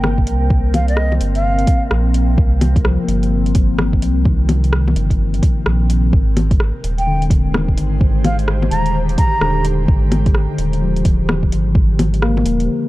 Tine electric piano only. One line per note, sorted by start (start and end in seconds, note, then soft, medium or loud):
0.00 3.04 A#3 medium
2.84 4.08 F3 medium
3.04 4.21 A#3 medium
4.26 5.49 D#3 medium
7.07 8.30 D3 medium
7.54 8.77 D#3 medium
9.42 10.65 D3 medium
10.82 12.05 F3 medium
12.22 12.66 A#3 medium